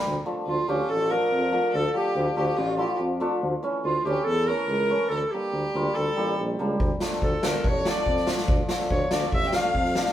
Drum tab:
SD |----------------|----------------|----------------|----------------|
BD |----------------|----------------|----------------|----------------|

SD |--oo--o---o--ooo|--oo--o--oo--ooo|
BD |o---o---o---o---|o---o---o---o---|